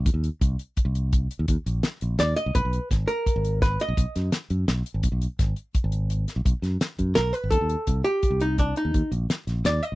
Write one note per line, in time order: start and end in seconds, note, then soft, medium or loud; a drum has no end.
0.06 0.13 D#2 medium
0.06 kick loud
0.06 closed hi-hat medium
0.14 0.28 D#2 medium
0.24 closed hi-hat medium
0.41 0.55 C2 medium
0.41 kick medium
0.41 closed hi-hat medium
0.59 closed hi-hat medium
0.77 kick medium
0.77 closed hi-hat medium
0.85 1.26 C2 medium
0.95 closed hi-hat medium
1.13 kick loud
1.13 closed hi-hat medium
1.31 closed hi-hat medium
1.39 1.46 D#2 medium
1.48 1.55 D#2 medium
1.48 kick medium
1.48 closed hi-hat medium
1.66 1.80 A#1 medium
1.66 closed hi-hat medium
1.83 snare loud
1.83 closed hi-hat medium
2.01 2.16 A#1 medium
2.01 closed hi-hat medium
2.19 2.33 D#2 medium
2.19 2.36 D5 medium
2.19 snare loud
2.19 closed hi-hat medium
2.36 2.53 D#5 loud
2.36 closed hi-hat medium
2.46 2.53 C2 medium
2.55 2.62 B1 medium
2.55 2.88 B4 medium
2.55 kick loud
2.55 closed hi-hat medium
2.65 2.78 B1 medium
2.73 closed hi-hat medium
2.91 3.05 G#1 medium
2.91 kick medium
2.91 snare soft
2.91 closed hi-hat medium
3.08 3.61 A#4 medium
3.08 closed hi-hat medium
3.26 kick medium
3.26 closed hi-hat medium
3.36 3.76 G#1 medium
3.45 closed hi-hat medium
3.62 3.80 B4 medium
3.62 kick loud
3.62 snare soft
3.62 closed hi-hat medium
3.80 4.30 D#5 medium
3.80 closed hi-hat medium
3.88 3.95 B1 medium
3.97 4.04 B1 medium
3.97 kick medium
3.97 closed hi-hat medium
4.16 4.29 F#2 medium
4.16 snare soft
4.16 closed hi-hat medium
4.32 snare medium
4.32 closed hi-hat medium
4.50 4.64 F#2 medium
4.50 closed hi-hat medium
4.68 4.82 B1 medium
4.68 snare loud
4.68 closed hi-hat medium
4.86 closed hi-hat medium
4.94 5.01 G#1 medium
5.03 5.10 B1 medium
5.03 kick loud
5.03 closed hi-hat medium
5.12 5.26 B1 medium
5.22 closed hi-hat medium
5.39 5.53 G#1 medium
5.39 kick loud
5.39 snare soft
5.39 closed hi-hat medium
5.56 closed hi-hat medium
5.75 kick medium
5.75 closed hi-hat medium
5.84 6.24 G#1 medium
5.92 closed hi-hat medium
6.10 closed hi-hat medium
6.28 snare soft
6.28 closed hi-hat medium
6.36 6.43 B1 medium
6.45 6.52 B1 medium
6.45 kick loud
6.45 closed hi-hat medium
6.62 6.76 F#2 medium
6.62 snare soft
6.62 closed hi-hat medium
6.81 snare loud
6.81 closed hi-hat medium
6.99 7.12 F#2 medium
6.99 kick medium
6.99 closed hi-hat medium
7.15 7.31 B1 medium
7.15 7.33 A#4 loud
7.15 snare loud
7.15 closed hi-hat medium
7.33 7.52 B4 medium
7.33 closed hi-hat medium
7.44 7.50 G#1 medium
7.51 7.59 D#2 medium
7.51 8.01 A4 medium
7.51 kick loud
7.51 closed hi-hat medium
7.61 7.75 D#2 medium
7.69 closed hi-hat medium
7.87 8.01 C2 medium
7.87 kick medium
7.87 closed hi-hat medium
8.04 8.41 G4 medium
8.04 closed hi-hat medium
8.23 kick medium
8.23 closed hi-hat medium
8.30 8.72 C2 medium
8.40 8.59 D#4 medium
8.40 closed hi-hat medium
8.58 8.77 D4 medium
8.58 kick medium
8.58 closed hi-hat medium
8.76 9.10 D#4 medium
8.76 closed hi-hat soft
8.85 8.92 D#2 medium
8.94 9.01 D#2 medium
8.94 kick medium
8.94 closed hi-hat medium
9.12 9.25 A#1 medium
9.12 closed hi-hat medium
9.30 snare medium
9.30 closed hi-hat medium
9.47 9.61 A#1 medium
9.47 snare soft
9.47 closed hi-hat soft
9.65 9.79 D#2 medium
9.65 9.83 D5 medium
9.65 snare medium
9.65 closed hi-hat medium
9.83 9.95 D#5 medium
9.83 closed hi-hat medium
9.92 9.95 C2 medium